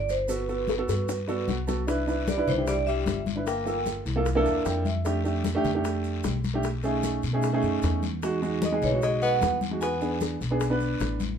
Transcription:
Already playing: G1 D5
0.09 C5, high bongo, high conga, short guiro, maracas
0.28 B3 F#4 A4 B4, high bongo, high conga, long guiro, maracas
0.48 B3 F#4 A4, high conga, maracas
0.68 high bongo, high conga, short guiro, maracas
0.77 B3 F#4 A4
0.88 G2, high bongo, high conga, short guiro, maracas
1.08 low bongo, high conga, long guiro, maracas
1.27 B3 F#4 A4 D5, low bongo, high conga, maracas
1.48 C2 F#5, low bongo, high conga, short guiro, maracas
1.67 B3 F#4 A4 A5, low bongo, high conga, short guiro, maracas
1.87 D4 E4 B4, high bongo, long guiro, maracas
2.07 D4 E4 B4, high conga, maracas
2.28 G3 D5, high bongo, high conga, short guiro, maracas
2.37 D4 E4 B4
2.47 C2 E3 C5, low conga, short guiro, maracas
2.57 D4 E4 G4
2.67 G3 D5, high bongo, high conga, long guiro, maracas
2.86 G3 E5, high conga, maracas
3.06 G1, high bongo, low bongo, high conga, short guiro, maracas
3.26 high conga, short guiro, maracas
3.36 D4 E4 B4
3.46 A#3 G5, high bongo, high conga, long guiro, maracas
3.65 A#3 F4 A4, high bongo, high conga, maracas
3.86 high bongo, high conga, short guiro, maracas
4.06 C2, high bongo, high conga, short guiro, maracas
4.16 A#3 F4 A4
4.26 high bongo, high conga, long guiro, maracas
4.35 A#3 D4 E4 A4
4.45 E2 A5, high bongo, high conga, maracas
4.65 F2 G5, high bongo, low bongo, high conga, short guiro, maracas
4.85 E5, high conga, short guiro, maracas
5.05 A3 D4 G4, high bongo, high conga, long guiro, maracas
5.24 A3 D4 G4, high conga, maracas
5.44 high bongo, high conga, short guiro, maracas
5.55 A3 D4 G4
5.65 F2, low conga, short guiro, maracas
5.75 A3 D4 G4
5.84 high bongo, high conga, long guiro, maracas
6.04 high conga, maracas
6.23 B1, high bongo, low bongo, high conga, short guiro, maracas
6.44 high conga, short guiro, maracas
6.54 A3 D4 G4
6.63 high bongo, high conga, long guiro, maracas
6.83 A3 C#4 D#4 G#4, high bongo, high conga, maracas
7.03 high bongo, high conga, short guiro, maracas
7.23 B2, high bongo, high conga, short guiro, maracas
7.33 A3 C#4 D#4 G#4
7.42 high bongo, high conga, long guiro, maracas
7.53 A3 C#4 D#4 G#4
7.62 F#2, high bongo, high conga, maracas
7.82 E2, high bongo, low bongo, high conga, short guiro, maracas
8.03 high conga, short guiro, maracas
8.22 G#3 D#4 F#4, high bongo, high conga, long guiro, maracas
8.42 G#3 D#4 F#4, high conga, maracas
8.62 G#3 D#5, high bongo, high conga, short guiro, maracas
8.72 G#3 D#4 G#4
8.82 B1 E3 C#5, low conga, short guiro, maracas
8.92 G#3 D#4 F#4
9.02 G#3 D#5, high bongo, high conga, long guiro, maracas
9.22 B3 F#5, high conga, maracas
9.41 E2, high bongo, low bongo, high conga, short guiro, maracas
9.61 high conga, short guiro, maracas
9.71 G#3 D#4 F#4
9.81 B3 G#5, high bongo, high conga, long guiro, maracas
10.01 B3 D4 G#4, high bongo, high conga, maracas
10.20 high bongo, high conga, short guiro, maracas
10.41 B1, high bongo, high conga, short guiro, maracas
10.51 B3 D4 G#4
10.60 high bongo, high conga, long guiro, maracas
10.70 B3 D4 B4
10.80 high bongo, high conga, maracas
11.00 A1, high bongo, low bongo, high conga, short guiro, maracas
11.20 high conga, short guiro, maracas

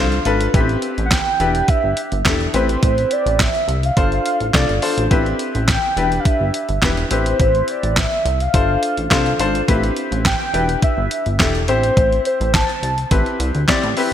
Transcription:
Already playing: C2 D4 F4 A4 C5 F5
0.12 closed hi-hat
0.25 G#1 D4 F4 A4 B4, closed hi-hat
0.41 closed hi-hat
0.54 A1 B3 E4 G4 B4, kick, closed hi-hat
0.60 C4
0.69 closed hi-hat
0.82 closed hi-hat
0.98 A1, closed hi-hat
1.06 F#5
1.11 G5, kick, snare, clap, closed hi-hat
1.40 E1 D4 E4 G4 B4, closed hi-hat
1.55 closed hi-hat
1.68 E5, kick, closed hi-hat
1.84 G1
1.97 closed hi-hat
2.12 G1, closed hi-hat
2.25 E1 D4 E4 G4 A4, kick, snare, clap, closed hi-hat
2.41 closed hi-hat
2.54 A1 C4 E4 G4 B4 C5, closed hi-hat
2.69 closed hi-hat
2.83 A1 C5, kick, closed hi-hat
2.98 closed hi-hat
3.11 D5, closed hi-hat
3.26 A1, closed hi-hat
3.40 E5, kick, snare, clap, closed hi-hat
3.55 closed hi-hat
3.68 C2, closed hi-hat
3.83 F5, closed hi-hat
3.96 G1 D4 F4 A4 C5, kick, closed hi-hat
4.12 closed hi-hat
4.26 closed hi-hat
4.40 A1, closed hi-hat
4.53 C2 D4 F4 A4 D5, kick, snare, clap, closed hi-hat
4.69 G1, closed hi-hat
4.82 D4 F4 A4 C5, open hi-hat
4.98 A1, closed hi-hat
5.11 A1 C4 E4 G4 B4, kick, closed hi-hat
5.26 closed hi-hat
5.39 closed hi-hat
5.55 A1, closed hi-hat
5.68 G5, kick, snare, clap, closed hi-hat
5.97 E1 D4 E4 G4 B4, closed hi-hat
6.12 closed hi-hat
6.20 F5
6.25 E5, kick, closed hi-hat
6.40 G1
6.54 closed hi-hat
6.69 G1, closed hi-hat
6.82 E1 D4 E4 G4 B4, kick, snare, clap, closed hi-hat
6.97 closed hi-hat
7.11 A1 C4 E4 G4 B4 C5, closed hi-hat
7.26 closed hi-hat
7.40 A1 C5, kick, closed hi-hat
7.55 closed hi-hat
7.68 D5, closed hi-hat
7.83 A1, closed hi-hat
7.97 E5, kick, snare, clap, closed hi-hat
8.25 C2, closed hi-hat
8.40 F5, closed hi-hat
8.54 G1 D4 F4 A4 C5, kick, closed hi-hat
8.83 closed hi-hat
8.97 A1, closed hi-hat
9.11 C2 D4 F4 A4 C5, kick, snare, clap, closed hi-hat
9.26 closed hi-hat
9.39 G#1 D4 F4 A4 C5, closed hi-hat
9.55 closed hi-hat
9.68 A1 C4 E4 G4 B4, kick, closed hi-hat
9.84 closed hi-hat
9.96 closed hi-hat
10.12 A1, closed hi-hat
10.25 G5, kick, snare, clap, closed hi-hat
10.54 E1 D4 E4 G4 B4, closed hi-hat
10.69 closed hi-hat
10.82 E5, kick, closed hi-hat
10.97 G1
11.11 closed hi-hat
11.26 G1, closed hi-hat
11.39 E1 D4 E4 G4 A4, kick, snare, clap, closed hi-hat
11.55 closed hi-hat
11.68 A1 C4 E4 G4 C5, closed hi-hat
11.83 closed hi-hat
11.97 A1, kick, closed hi-hat
12.12 closed hi-hat
12.25 C5, closed hi-hat
12.41 A1, closed hi-hat
12.54 A5, kick, snare, clap, closed hi-hat
12.69 closed hi-hat
12.83 C2, closed hi-hat
12.98 closed hi-hat
13.11 A1 C4 E4 G4 B4, kick, closed hi-hat
13.26 closed hi-hat
13.40 C2, closed hi-hat
13.55 D2, closed hi-hat
13.68 C4 E4 G4 D5, kick, snare, clap, closed hi-hat
13.84 A2, closed hi-hat
13.97 C4 E4 G4 B4, open hi-hat

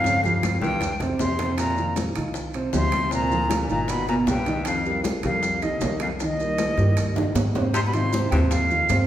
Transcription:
Already playing: F2 G2 F5
0.04 C#3 C#4 C#5, high bongo, high conga, maracas
0.21 F2 F3 F4 G4 F5, high bongo, high conga, maracas
0.43 high bongo, high conga, high timbale, low timbale, maracas
0.61 C2 G2 E3 E4 G4 G5, high bongo, high conga, maracas
0.81 high bongo, low conga, high timbale, maracas
1.00 C3 C4 C5, high bongo, low conga, high timbale, maracas
1.19 F2 C3 C6, high bongo, low bongo, low timbale, maracas
1.39 C3 C4 C5, low conga, high timbale, maracas
1.57 A#2 A#5, high bongo, high conga, high timbale, maracas
1.77 D#3 D#4 F4, high conga, maracas
1.96 high bongo, high conga, high timbale, low timbale, maracas
2.16 C2 D#3 D#4 F4, high conga, high timbale, maracas
2.34 high bongo, high conga, maracas
2.54 C3 C4 C5, high conga, high timbale, maracas
2.73 D2 C3 F3 D#4 F4 C6, high bongo, low bongo, high conga, low timbale, maracas
2.92 high conga, high timbale, maracas
3.11 A#2 C3 C4 C5 A#5, high bongo, high conga, maracas
3.31 F3 F4 G#4, high bongo, high conga, maracas
3.50 high bongo, high conga, high timbale, low timbale, maracas
3.69 G1 A#2 D#3 D#4 F4 A#5, high bongo, high conga, maracas
3.88 B2 B5, high bongo, high conga, high timbale, maracas
4.07 A#2 B2 B3 B4 A#5, high bongo, high conga, high timbale, maracas
4.27 C2 G2 G5, high bongo, low bongo, high conga, low timbale, maracas
4.46 D#3 D#4 D#5, high conga, high timbale, maracas
4.65 F2 F5, high bongo, high conga, high timbale, maracas
4.85 G3 G4 A#4, high conga, maracas
5.04 high bongo, high conga, high timbale, low timbale, maracas
5.23 C2 F2 G3 G4 A#4 F5, high conga, high timbale, maracas
5.43 high bongo, high conga, maracas
5.62 D#2 D#3 D#4 D#5, high conga, high timbale, maracas
5.81 C2 G3 G4 A#4, high bongo, low bongo, high conga, low timbale, maracas
6.00 F2 F5, high timbale, maracas
6.20 D#2 D#3 D#4 D#5, high bongo, high conga, maracas
6.40 G3 G4 A#4, high bongo, high conga, maracas
6.58 high bongo, high conga, high timbale, low timbale, maracas
6.77 G2 G3 G4 A#4, high bongo, maracas
6.97 high conga, high timbale, maracas
7.16 D#3 D#4 D#5, low bongo, low conga, high timbale, maracas
7.35 G#2, low bongo, low timbale, maracas
7.55 C3 C4 C5, low bongo, low conga, low timbale, maracas
7.73 C3 C6, high bongo, high conga, high timbale, maracas
7.86 B2 B5
7.93 C3 D#3 D#4 F4 C6, high conga, high timbale, maracas
8.13 C3 C4 C5, high bongo, high conga, maracas
8.31 D#2 G2 C3 C4 C5 G5, high bongo, high conga, low conga, high timbale, maracas
8.49 F2 F5, high bongo, high conga, high timbale, maracas
8.70 D#3 D#4 F4, high bongo, high conga, maracas
8.89 G2 C3 C4 C5, high bongo, low bongo, high conga, high timbale, low timbale, maracas

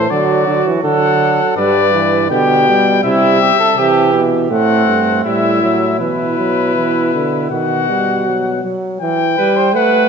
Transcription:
Already playing: C5
0.09 D3 F#3 F#4 D5
0.47 D3
0.66 E3
0.83 D3 F#3 A4 F#5
1.56 G2 G3 B4 D5
1.94 E3
2.30 B2 D3 G4 G5
2.68 G3
3.04 C3 G3 E4 E5
3.41 G4
3.59 A4
3.77 C3 E3 G4
4.14 B2
4.51 A2 A3 C4 F#5
4.87 G2
5.24 A2 G3 E4 E5
5.62 F#3
5.99 B2 E3 E4 B4
6.38 F#3
6.76 E3
7.14 D3
7.50 B2 D#3 F#4 F#5
7.89 G3
8.26 F#3
8.64 F#3
9.01 E3 G5
9.37 G3 B4
9.57 C5
9.75 A3 B4 F#5

